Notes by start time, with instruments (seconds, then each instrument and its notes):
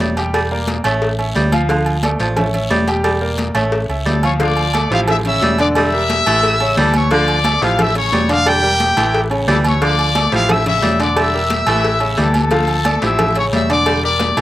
Already playing: grand piano C#4 C#5 E5
0.00 fingered electric bass E1, baritone saxophone G3, cowbell, high conga, low timbale, short guiro
0.17 grand piano G3 G4 G5, cowbell, low agogo, short guiro
0.34 baritone saxophone G3, cowbell, high conga, low agogo, long guiro
0.51 grand piano A#3 A#4 D5, high conga
0.67 cowbell, high conga, low agogo, short guiro
0.84 fingered electric bass A1, baritone saxophone A3, grand piano C#4 C#5 E5, cowbell, high conga, low agogo, short guiro
1.02 cowbell, long guiro
1.18 grand piano C#4 C#5 E5, high conga, low agogo
1.35 fingered electric bass D2, baritone saxophone G3, cowbell, high conga, low timbale, short guiro
1.52 grand piano F3 F4 F5, high conga, low agogo, short guiro
1.69 baritone saxophone D3, grand piano F3 F4 F5, cowbell, high conga, low agogo, long guiro
1.86 high conga, low agogo
2.03 grand piano A3 A4 D5, cowbell, high conga, low agogo, short guiro
2.19 fingered electric bass A1, baritone saxophone F3, cowbell, high conga, short guiro
2.37 grand piano C#4 C#5 E5, cowbell, high conga, low conga, low agogo, long guiro
2.54 grand piano C#4 C#5 E5, high conga, low agogo
2.70 fingered electric bass E1, baritone saxophone G3, cowbell, high conga, low timbale, short guiro
2.88 grand piano G3 G4 G5, cowbell, low agogo, short guiro
3.04 baritone saxophone G3, cowbell, low agogo, long guiro
3.22 grand piano A#3 A#4 D5, high conga
3.38 cowbell, high conga, low agogo, short guiro
3.55 fingered electric bass A1, baritone saxophone A3, grand piano C#4 C#5 E5, cowbell, high conga, low agogo, short guiro
3.72 cowbell, long guiro
3.89 fingered electric bass C#2, grand piano C#4 C#5 E5, high conga, low agogo
4.05 fingered electric bass D2, baritone saxophone G3, trumpet section A4 A5, cowbell, high conga, low timbale, short guiro
4.23 grand piano F3 F4 F5, trumpet section C#5 C#6, high conga, low agogo, short guiro
4.40 baritone saxophone D3, grand piano F3 F4 F5, trumpet section D5 D6, cowbell, high conga, low agogo, long guiro
4.57 high conga, low agogo
4.74 grand piano A3 A4 D5, cowbell, high conga, low agogo, short guiro
4.91 fingered electric bass A1, baritone saxophone F3, grand piano F3 E4 G4, trumpet section F5, cowbell, short guiro
5.08 trumpet section E5 E6, cowbell, high conga, low conga, low agogo, long guiro
5.25 grand piano C#3 C#4 C#5, trumpet section E5 E6, high conga, low agogo
5.42 fingered electric bass E1, baritone saxophone G3, cowbell, high conga, low timbale, short guiro
5.58 grand piano D3 D4 D5, trumpet section D5 D6, cowbell, high conga, low agogo, short guiro
5.75 baritone saxophone G3, trumpet section E5 E6, cowbell, high conga, low agogo, long guiro
5.93 grand piano G3 G4 A#4, high conga
6.10 cowbell, high conga, low agogo, short guiro
6.26 fingered electric bass A1, grand piano E3 E4 G4, baritone saxophone A3, cowbell, low agogo, short guiro
6.43 cowbell, high conga, long guiro
6.60 grand piano C#3 C#4 C#5, high conga, low agogo
6.77 fingered electric bass D2, grand piano E3 E4 G4, baritone saxophone G3, trumpet section A4 A5, cowbell, high conga, short guiro
6.94 trumpet section C#5 C#6, high conga, low agogo, short guiro
7.11 baritone saxophone D3, grand piano F3 F4 F5, trumpet section D5 D6, cowbell, high conga, low agogo, long guiro
7.28 high conga, low agogo
7.44 grand piano A3 A4 D5, cowbell, high conga, low agogo, short guiro
7.62 fingered electric bass A1, grand piano F3 E4 G4, baritone saxophone F3, trumpet section F5, cowbell, high conga, short guiro
7.79 trumpet section E5 E6, cowbell, high conga, low conga, low agogo, long guiro
7.95 grand piano C#3 C#4 C#5, trumpet section C#5 C#6, high conga, low agogo
8.12 fingered electric bass E1, baritone saxophone G3, cowbell, high conga, low timbale, short guiro
8.29 grand piano D3 D4 D5, trumpet section F5, cowbell, low agogo, short guiro
8.46 baritone saxophone G3, trumpet section G4 G5, cowbell, low agogo, long guiro
8.63 grand piano G3 G4 A#4, high conga
8.80 cowbell, high conga, low agogo, short guiro
8.97 fingered electric bass A1, grand piano E3 E4 G4, baritone saxophone A3, cowbell, high conga, low agogo, short guiro
9.14 cowbell, high conga, long guiro
9.30 grand piano C#3 C#4 C#5, high conga, low agogo
9.48 fingered electric bass D2, grand piano E3 E4 G4, baritone saxophone G3, trumpet section A4 A5, cowbell, high conga, low timbale, short guiro
9.64 trumpet section C#5 C#6, high conga, low agogo, short guiro
9.81 baritone saxophone D3, grand piano F3 F4 F5, trumpet section D5 D6, cowbell, low agogo, long guiro
9.98 high conga, low agogo
10.15 grand piano A3 A4 D5, cowbell, high conga, low agogo, short guiro
10.32 fingered electric bass A1, grand piano F3 E4 G4, baritone saxophone F3, trumpet section F5, cowbell, high conga, short guiro
10.49 trumpet section E5 E6, cowbell, high conga, low conga, low agogo, long guiro
10.66 grand piano C#3 C#4 C#5, trumpet section E5 E6, high conga, low conga, low agogo
10.82 fingered electric bass E1, baritone saxophone G3, cowbell, high conga, low timbale, short guiro
11.00 grand piano D3 D4 D5, trumpet section D5 D6, cowbell, high conga, low agogo, short guiro
11.16 baritone saxophone G3, trumpet section E5 E6, cowbell, low agogo, long guiro
11.34 grand piano G3 G4 A#4
11.50 cowbell, high conga, low agogo, short guiro
11.67 fingered electric bass A1, grand piano E3 E4 G4, baritone saxophone A3, cowbell, low agogo, short guiro
11.84 cowbell, long guiro
12.00 grand piano C#3 C#4 C#5, high conga, low agogo
12.17 fingered electric bass D2, grand piano E3 E4 G4, baritone saxophone G3, trumpet section A4 A5, cowbell, high conga, short guiro
12.34 trumpet section A4 A5, high conga, low agogo, short guiro
12.51 baritone saxophone D3, grand piano F3 F4 F5, cowbell, high conga, low agogo, long guiro
12.68 low agogo
12.85 grand piano A3 A4 D5, cowbell, high conga, low agogo, short guiro
13.02 fingered electric bass A1, baritone saxophone F3, grand piano F3 E4 G4, trumpet section E5 E6, cowbell, short guiro
13.19 cowbell, high conga, low conga, low agogo, long guiro
13.35 grand piano C#3 C#4 C#5, trumpet section C#5 C#6, high conga, low agogo
13.53 fingered electric bass E1, baritone saxophone G3, trumpet section E5 E6, cowbell, high conga, short guiro
13.70 grand piano D3 D4 D5, trumpet section D5 D6, cowbell, high conga, low agogo, short guiro
13.86 baritone saxophone G3, cowbell, high conga, low agogo, long guiro
14.04 grand piano G3 G4 A#4, trumpet section D5 D6, high conga
14.20 cowbell, high conga, high timbale, low agogo, short guiro
14.37 fingered electric bass A1, grand piano E3 E4 G4, baritone saxophone A3, trumpet section C#5, cowbell, high conga, low agogo, short guiro